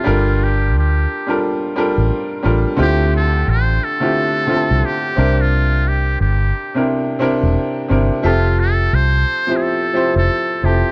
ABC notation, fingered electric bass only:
X:1
M:4/4
L:1/16
Q:"Swing 16ths" 1/4=88
K:Cmix
V:1 name="Fingered electric bass" clef=bass
G,,,4 D,,2 z4 z A,,, z2 A,,, z | D,,4 A,,,2 z4 z C,, z2 C,,2- | C,,4 G,,,2 z4 z E,,, z2 G,,, z | F,,,4 C,,2 z4 z F,,, z2 F,,, z |]